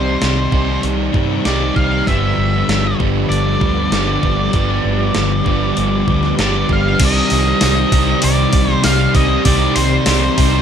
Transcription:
Already playing: fingered electric bass C2, overdriven electric guitar C3 D#3 G3 D#4 G4, string machine C3 C4 D#4 G4 C5, distorted electric guitar C4, lead electric guitar C5
0.22 fingered electric bass C2, snare, open hi-hat
0.52 fingered electric bass C2, overdriven electric guitar C3 D#3 G3 D#4 G4, kick
0.83 fingered electric bass C2, open hi-hat
1.12 fingered electric bass G2, distorted electric guitar C3 G3 C4, kick
1.45 fingered electric bass C2, overdriven electric guitar C3 D#3 G3 D#4 G4, distorted electric guitar C4, lead electric guitar D5, snare, open hi-hat
1.76 fingered electric bass C2, lead electric guitar F5, kick
2.07 fingered electric bass G1, overdriven electric guitar G2 D3 F3 G3 B3 G4, string machine G3 D4 F4 A4 B4, lead electric guitar E5, kick, open hi-hat
2.38 fingered electric bass G1
2.68 fingered electric bass G1, snare, open hi-hat
2.99 fingered electric bass G1, overdriven electric guitar G2 D3 F3 G3 B3 G4, kick
3.29 fingered electric bass G1, lead electric guitar D5, open hi-hat
3.60 fingered electric bass D2, distorted electric guitar G2 D3 G3, kick
3.91 fingered electric bass G1, overdriven electric guitar G2 D3 F3 G3 B3 G4, snare, open hi-hat
4.23 fingered electric bass G1, kick
4.53 fingered electric bass G1, overdriven electric guitar G2 D3 F3 G3 B3 G4, string machine G4, kick, open hi-hat
4.85 fingered electric bass G1
5.14 fingered electric bass G1, snare, open hi-hat
5.46 fingered electric bass G1, overdriven electric guitar G2 D3 F3 G3 B3 G4, kick
5.77 fingered electric bass G1, open hi-hat
6.06 fingered electric bass D2, distorted electric guitar G2 D3 G3, kick
6.23 snare
6.39 fingered electric bass G1, overdriven electric guitar G2 D3 F3 G3 B3 G4, lead electric guitar D5, snare, open hi-hat
6.69 fingered electric bass G1, lead electric guitar F5, kick
7.00 fingered electric bass C2, overdriven electric guitar C3 D#3 G3 C4 G4, string machine C3 C4 D#4 G4 C5, kick, open hi-hat, crash
7.05 lead electric guitar D#5
7.30 fingered electric bass C2, open hi-hat
7.61 fingered electric bass C2, snare, open hi-hat
7.92 fingered electric bass C2, overdriven electric guitar C3 D#3 G3 C4 G4, kick, open hi-hat
8.22 fingered electric bass C2, lead electric guitar D5, open hi-hat
8.53 fingered electric bass C2, kick, open hi-hat
8.69 lead electric guitar C5, snare
8.84 fingered electric bass C2, overdriven electric guitar C3 D#3 G3 C4 G4, lead electric guitar F5, snare, open hi-hat
9.14 fingered electric bass C2, distorted electric guitar C3 G3 C4, lead electric guitar D#5, kick, open hi-hat
9.45 fingered electric bass C2, overdriven electric guitar C3 D#3 G3 C4 G4, lead electric guitar D5, kick, open hi-hat
9.75 fingered electric bass C2, lead electric guitar C5, open hi-hat
10.06 fingered electric bass C2, snare, open hi-hat
10.38 fingered electric bass C2, overdriven electric guitar C3 D#3 G3 C4 G4, kick, open hi-hat

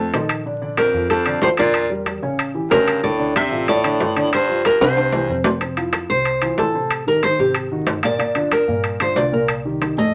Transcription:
Already playing: upright bass F2, baritone saxophone F2, grand piano A3 A4 C5, nylon-string guitar A4
0.13 upright bass A#1, grand piano D#3 D#4 D#5, high timbale, low timbale
0.29 high timbale
0.46 grand piano D3 D4 D5
0.62 grand piano D3 D4 D5
0.77 baritone saxophone F2, nylon-string guitar A#4, high timbale, low timbale
0.93 upright bass F2, grand piano F3 F4 A4
1.10 baritone saxophone F2, nylon-string guitar A4, high timbale
1.26 grand piano D3 D4 D5, high timbale
1.41 upright bass E2, baritone saxophone A2, grand piano F3 F4 A4, nylon-string guitar C5, low timbale
1.57 baritone saxophone A#2, grand piano D3 D4 D5, nylon-string guitar D5, high timbale
1.74 high timbale
1.90 grand piano G3 G4 A#4
2.06 high timbale, low timbale
2.23 upright bass A1, grand piano C#3 C#4 C#5
2.39 high timbale
2.54 grand piano E3 E4 G4
2.70 upright bass D2, baritone saxophone G2, grand piano C#3 C#4 C#5, nylon-string guitar A#4, high timbale, low timbale
2.88 high timbale
3.03 baritone saxophone A2, grand piano D3 D4 D5, nylon-string guitar D5
3.19 grand piano D3 D4 D5
3.36 baritone saxophone C3, nylon-string guitar E5, high timbale, low timbale
3.51 upright bass A1, grand piano F3 F4 A4
3.68 baritone saxophone A2, nylon-string guitar D5, high timbale
3.84 grand piano D3 D4 D5, high timbale
4.00 upright bass G1, grand piano F3 F4 A4, low timbale
4.16 grand piano D3 D4 D5, high timbale
4.32 baritone saxophone G2, nylon-string guitar C5, high timbale
4.49 grand piano F3 F4 G4
4.64 baritone saxophone G2, nylon-string guitar A#4, high timbale, low timbale
4.80 upright bass C2, baritone saxophone G2, grand piano C3 C4 C5, nylon-string guitar C5, high timbale
4.97 high timbale
5.12 grand piano E3 E4 G4, low timbale
5.28 upright bass F2, grand piano C3 C4 C5
5.44 low timbale
5.61 grand piano C3 C4 C5, high timbale
5.77 grand piano F3 E4 F4, high timbale
5.93 high timbale, low timbale
6.09 upright bass C2, grand piano C3 C4 C5, nylon-string guitar C5
6.25 high timbale
6.42 grand piano E3 E4 F4, high timbale
6.58 upright bass A1, grand piano E3 E4 F4, nylon-string guitar A4, low timbale
6.75 grand piano C3 C4 C5
6.91 high timbale
7.07 grand piano D#3 D#4 G4, nylon-string guitar A#4
7.23 grand piano D#3 D#4 G4, nylon-string guitar C5, high timbale, low timbale
7.39 upright bass G#1, grand piano C3 C4 C5, nylon-string guitar G4
7.55 high timbale
7.71 grand piano D#3 D#4 F#4
7.87 upright bass G1, high timbale, low timbale
8.03 grand piano A#2 A#3 A#4, nylon-string guitar D5, high timbale
8.18 grand piano A#2 A#3 A#4, high timbale
8.35 grand piano D3 D4 F4, high timbale
8.51 nylon-string guitar A#4, high timbale, low timbale
8.68 upright bass G2, grand piano A#2 A#3 A#4
8.84 high timbale
9.00 grand piano D3 D4 F4, nylon-string guitar C5, high timbale
9.15 upright bass C2, grand piano D3 D4 F4, nylon-string guitar D5, low timbale
9.32 grand piano A#2 A#3 A#4, nylon-string guitar A#4
9.48 high timbale
9.65 grand piano D#3 D#4 G4
9.81 grand piano D#3 D#4 G4, high timbale, low timbale
9.97 upright bass F2, grand piano A2 A3 A4, nylon-string guitar D#5

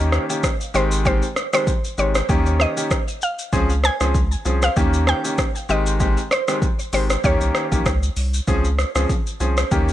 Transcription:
Already playing: sub bass D#2, grand piano D#3 A#3 C#4 G4, synth pluck D#5
0.12 cross-stick, shaker
0.29 grand piano D#3 A#3 C#4 G4, shaker
0.43 kick, cross-stick, shaker
0.61 shaker
0.74 sub bass G#1, grand piano D#3 G#3 C4 G4, synth pluck C5, shaker
0.92 shaker
1.05 grand piano D#3 G#3 C4 G4, synth pluck C5, kick, shaker
1.22 shaker
1.36 cross-stick, shaker
1.53 grand piano D#3 G#3 C4 G4, synth pluck C5, cross-stick, shaker
1.67 kick, shaker
1.84 shaker
1.98 sub bass G#1, grand piano D#3 G#3 C4 G4, synth pluck C#5, shaker
2.15 cross-stick, shaker
2.29 sub bass D#2, grand piano D#3 A#3 C#4 G4, kick, shaker
2.46 shaker
2.60 synth pluck D#5, cross-stick, shaker
2.77 grand piano D#3 A#3 C#4 G4, shaker
2.91 kick, cross-stick, shaker
3.08 shaker
3.22 synth pluck F5, shaker
3.39 shaker
3.53 sub bass C#2, grand piano F3 C4 C#4 G#4, kick, shaker
3.70 shaker
3.84 synth pluck G#5, cross-stick, shaker
4.00 sub bass C#2, grand piano F3 C4 C#4 G#4, cross-stick, shaker
4.15 kick, shaker
4.32 shaker
4.45 sub bass C2, grand piano F3 C4 C#4 G#4, shaker
4.62 synth pluck F5, cross-stick, shaker
4.76 sub bass D#2, grand piano D#3 A#3 C#4 G4, kick, shaker
4.93 shaker
5.07 synth pluck G5, cross-stick, shaker
5.24 grand piano D#3 A#3 C#4 G4, shaker
5.38 kick, cross-stick, shaker
5.55 shaker
5.69 sub bass G#1, grand piano D#3 G#3 C4 G4, synth pluck D#5, shaker
5.86 shaker
6.00 grand piano D#3 G#3 C4 G4, kick, shaker
6.17 shaker
6.31 synth pluck C5, cross-stick, shaker
6.48 grand piano D#3 G#3 C4 G4, cross-stick, shaker
6.62 kick, shaker
6.79 shaker
6.93 sub bass G#1, grand piano D#3 G#3 C4 G4, synth pluck C5, open hi-hat, shaker
7.10 cross-stick, shaker
7.24 sub bass D#2, grand piano D#3 A#3 C#4 G4, synth pluck C#5, kick, shaker
7.41 sub bass C2, shaker
7.55 cross-stick, shaker
7.72 sub bass A#1, grand piano D#3 A#3 C#4 G4, kick, shaker
7.86 sub bass C#2, kick, cross-stick, shaker
8.03 shaker
8.17 sub bass C2, open hi-hat, shaker
8.34 shaker
8.47 sub bass C#2, grand piano F3 C4 C#4 G#4, kick, shaker
8.65 shaker
8.79 cross-stick, shaker
8.95 sub bass C#2, grand piano F3 C4 C#4 G#4, cross-stick, shaker
9.09 kick, shaker
9.27 shaker
9.40 sub bass C2, grand piano F3 C4 C#4 G#4, shaker
9.57 cross-stick, shaker
9.71 sub bass D#2, grand piano D#3 A#3 C#4 G4, kick, shaker
9.88 shaker

